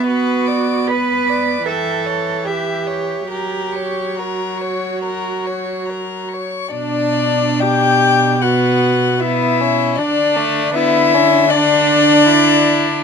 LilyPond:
<<
  \new Staff \with { instrumentName = "Violin" } { \time 4/4 \key b \minor \tempo 4 = 75 b''8 d'''8 b''8 d'''8 g''8 e''8 g''8 e''8 | ais''8 cis'''8 ais''8 cis'''8 ais''8 cis'''8 ais''8 cis'''8 | d''4 g''4 fis''4 e''4 | d''4 e''4 d''2 | }
  \new Staff \with { instrumentName = "Violin" } { \time 4/4 \key b \minor b'8 d''8 b'8 d''8 e''8 cis''8 e''8 cis''8 | ais'8 cis''8 ais'8 cis''8 ais'8 cis''8 ais'8 cis''8 | d'2 b4 b8 cis'8 | d'8 a8 b8 cis'8 d'4 e'4 | }
  \new Staff \with { instrumentName = "Cello" } { \time 4/4 \key b \minor fis'4 b'4 a'4 g'4 | g'4 fis'2~ fis'8 r8 | b,1 | d1 | }
  \new Staff \with { instrumentName = "Viola" } { \time 4/4 \key b \minor b2 e2 | fis2.~ fis8. r16 | d'4 g'4 fis'4 e'4 | d'4 e'4 d'2 | }
>>